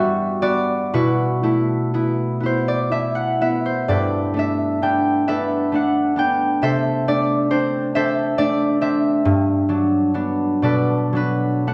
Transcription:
0.00 0.96 G2 medium
0.00 0.96 G3 medium
0.00 0.41 B3 medium
0.00 0.41 F#4 medium
0.00 0.97 G4 medium
0.00 0.93 B4 medium
0.00 0.41 D5 loud
0.00 1.13 E5 loud
0.00 2.95 F#5 loud
0.42 1.93 B3 medium
0.42 0.93 F#4 medium
0.42 0.96 D5 loud
0.93 3.93 B2 medium
0.93 1.42 E4 medium
0.93 3.94 F#4 medium
0.93 3.89 B4 medium
1.43 2.91 A3 medium
1.43 1.93 E4 medium
1.94 2.40 B3 medium
1.94 2.42 E4 medium
2.40 3.40 B3 soft
2.40 2.91 E4 medium
2.46 2.84 C5 medium
2.68 3.09 D5 medium
2.92 4.33 A3 medium
2.92 3.41 E4 medium
2.92 3.33 E5 medium
3.15 3.57 F#5 medium
3.41 4.81 B3 soft
3.41 3.93 E4 soft
3.41 3.82 E5 medium
3.66 4.05 C5 medium
3.88 6.65 G2 medium
3.88 5.28 A4 medium
3.88 5.28 B4 medium
3.88 7.07 D5 medium
4.34 5.71 A3 medium
4.34 4.82 D4 medium
4.39 5.26 E5 medium
4.82 5.26 B3 soft
4.82 5.27 D4 medium
4.82 6.16 G5 medium
5.27 6.16 B3 soft
5.27 5.73 D4 medium
5.27 6.62 A4 medium
5.27 6.66 B4 medium
5.27 6.04 E5 medium
5.72 7.07 A3 soft
5.72 6.16 D4 medium
5.72 6.49 F#5 medium
6.16 6.65 B3 soft
6.16 7.07 D4 medium
6.16 10.09 G5 medium
6.62 9.28 C3 medium
6.62 7.95 A4 medium
6.62 7.49 C5 medium
6.62 7.94 E5 medium
7.08 8.37 A3 medium
7.08 7.50 D4 medium
7.08 8.37 D5 loud
7.51 7.94 C4 medium
7.51 7.94 D4 medium
7.51 7.95 C5 medium
7.95 8.80 C4 medium
7.95 8.38 D4 medium
7.95 9.29 A4 medium
7.95 9.29 C5 medium
7.95 8.80 E5 loud
8.38 9.29 A3 medium
8.38 8.81 D4 medium
8.38 10.62 D5 loud
8.81 9.28 C4 medium
8.81 9.68 D4 medium
8.81 9.28 E5 medium
9.25 10.67 G2 medium
9.69 11.12 F#3 medium
9.69 10.13 D4 medium
10.14 11.74 B3 medium
10.14 11.14 D4 medium
10.62 11.74 B2 medium
10.62 11.74 A4 medium
10.62 11.13 B4 medium
10.62 11.74 D5 medium
11.13 11.74 F#3 medium
11.13 11.66 D4 medium
11.13 11.74 B4 medium
11.67 11.74 A3 soft
11.67 11.74 D4 soft
11.67 11.74 F#5 medium

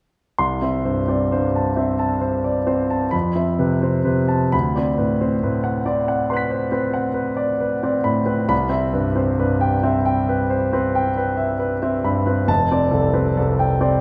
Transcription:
0.39 3.11 C2 soft
0.39 0.76 C6 medium
0.62 0.99 C4 soft
0.62 0.99 E5 soft
0.85 1.22 G2 soft
0.85 1.23 C5 soft
1.08 1.46 C4 soft
1.08 1.32 D5 soft
1.32 1.70 G2 soft
1.32 1.69 C5 soft
1.56 1.93 A5 soft
1.76 2.14 C4 soft
1.76 2.14 E5 soft
1.99 2.36 A5 soft
2.21 2.58 C5 soft
2.44 2.68 D5 soft
2.67 3.04 C4 soft
2.67 3.04 C5 soft
2.90 3.14 A5 soft
3.11 4.48 F2 soft
3.11 3.50 B5 medium
3.35 3.73 C4 soft
3.35 3.74 E5 soft
3.59 3.97 C3 soft
3.59 3.97 B4 soft
3.82 4.20 C4 soft
3.82 4.06 C5 soft
4.05 4.43 C3 soft
4.05 4.43 B4 soft
4.28 4.52 A5 soft
4.52 8.47 D2 soft
4.52 4.89 B5 medium
4.76 5.13 C4 soft
4.76 5.12 D5 soft
4.98 5.34 A2 soft
4.98 5.34 B4 soft
5.21 5.57 C4 soft
5.21 5.43 C5 soft
5.43 5.78 A2 soft
5.43 5.78 B4 soft
5.64 5.99 F#5 soft
5.86 6.21 C4 soft
5.86 6.21 D5 soft
6.08 6.43 F#5 soft
6.30 6.65 B4 soft
6.30 8.47 C6 soft
6.30 8.49 F#6 soft
6.37 8.50 B6 soft
6.50 6.73 C5 soft
6.72 7.08 C4 soft
6.72 7.08 B4 soft
6.94 7.30 F#5 soft
7.14 7.52 B4 soft
7.37 7.74 D5 soft
7.61 7.97 B4 soft
7.83 8.19 C4 soft
7.83 8.19 D5 soft
8.04 8.41 A2 soft
8.04 8.41 B5 soft
8.26 8.49 C4 soft
8.26 8.49 B4 soft
8.48 12.44 C2 soft
8.48 8.85 B5 medium
8.69 9.07 C4 soft
8.69 9.07 E5 soft
8.93 9.30 G2 soft
8.93 9.30 B4 soft
9.16 9.53 C4 soft
9.16 9.40 C5 soft
9.39 9.76 G2 soft
9.39 9.76 B4 soft
9.61 9.97 G5 soft
9.83 10.20 C4 soft
9.83 10.20 E5 soft
10.05 10.42 G5 soft
10.29 10.64 B4 soft
10.50 10.73 C5 soft
10.73 11.08 C4 soft
10.73 11.08 B4 soft
10.95 11.30 G5 soft
11.17 11.51 B4 soft
11.37 11.73 E5 soft
11.59 11.95 B4 soft
11.82 12.18 C4 soft
11.82 12.18 E5 soft
12.04 12.40 G2 soft
12.04 12.40 B5 soft
12.26 12.49 C4 soft
12.26 12.48 B4 soft
12.48 14.01 F1 soft
12.48 12.84 A5 medium
12.71 13.06 C4 soft
12.71 13.06 D5 soft
12.91 13.27 C2 soft
12.91 13.27 A4 soft
13.13 13.50 C4 soft
13.13 13.36 B4 soft
13.37 13.73 C2 soft
13.37 13.73 A4 soft
13.59 13.95 G5 soft
13.81 14.01 C4 soft
13.81 14.01 D5 soft

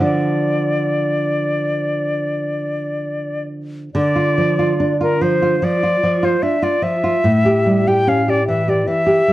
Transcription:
0.00 3.88 D3 medium
0.00 3.89 F3 soft
0.00 3.90 D4 soft
0.00 3.44 D5 medium
3.94 5.59 D3 medium
3.94 4.97 D5 medium
4.16 4.51 F4 soft
4.38 4.72 F3 soft
4.59 4.93 F4 soft
4.80 5.13 D4 medium
5.01 5.34 F4 soft
5.01 5.23 A#4 medium
5.21 5.55 F3 soft
5.21 5.66 C5 medium
5.42 5.75 F4 soft
5.62 5.96 F3 soft
5.62 6.26 D5 medium
5.83 6.16 F4 soft
6.03 6.36 F3 soft
6.23 6.55 F4 soft
6.23 6.44 C5 medium
6.43 6.75 D4 soft
6.43 6.65 E5 medium
6.62 6.95 F4 soft
6.62 6.84 D5 medium
6.82 7.16 F3 soft
6.82 7.89 E5 medium
7.04 7.25 F4 soft
7.24 8.85 A2 medium
7.45 7.79 G4 soft
7.66 8.00 G3 soft
7.88 8.21 G4 soft
7.88 8.10 G5 medium
8.07 8.40 C#4 soft
8.07 8.31 F5 medium
8.28 8.61 G4 soft
8.28 8.47 D5 medium
8.48 8.81 E3 soft
8.48 8.71 E5 medium
8.68 9.01 G4 soft
8.68 8.89 D5 medium
8.87 9.21 E3 soft
8.87 9.33 E5 medium
9.06 9.33 G4 soft
9.28 9.33 G3 soft

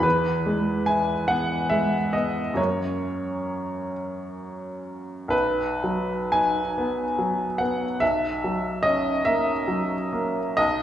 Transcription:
0.00 2.51 E2 medium
0.00 0.85 B4 medium
0.46 1.11 G#3 soft
0.86 1.54 E4 soft
0.86 1.27 G#5 medium
1.28 1.96 B3 soft
1.28 1.70 F#5 medium
1.70 2.41 G#3 soft
1.70 2.13 E5 medium
2.13 2.58 B3 soft
2.13 2.57 D#5 medium
2.54 5.26 F#2 medium
2.54 5.27 F#3 soft
2.54 5.27 A#3 soft
2.54 3.92 C#5 medium
2.58 5.28 C#4 soft
5.28 7.96 B1 medium
5.28 6.32 B4 medium
5.84 6.60 F#3 soft
6.32 7.03 D#4 soft
6.32 7.60 G#5 medium
6.78 7.44 B3 soft
7.19 7.85 F#3 soft
7.58 8.02 B3 soft
7.58 8.00 F#5 medium
8.00 10.53 B1 medium
8.00 8.83 E5 medium
8.44 9.10 F#3 soft
8.83 9.51 C#4 soft
8.83 9.25 D#5 medium
9.25 9.94 A#3 medium
9.25 10.57 E5 medium
9.68 10.38 F#3 soft
10.13 10.58 A#3 soft
10.57 10.83 B1 medium
10.57 10.83 D#5 medium

